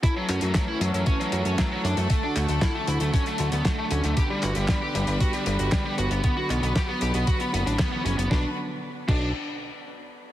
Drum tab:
CC |----------------|----------------|----------------|----------------|
HH |x-xxx-xxxxxxx-xx|x-xxx-xxxxxxx-xx|x-xxx-xxxxxxx-xx|x-xxx-xxxxxxx-xx|
CP |--x-x-------x---|--x-x-------x---|--x-x-------x---|--x-x-------x---|
SD |----o-------o---|----o-------o---|----o-------o---|----o-------o---|
BD |o---o---o---o---|o---o---o---o---|o---o---o---o---|o---o---o---o---|

CC |------x---------|
HH |----------------|
CP |----------------|
SD |o---------------|
BD |o-----o---------|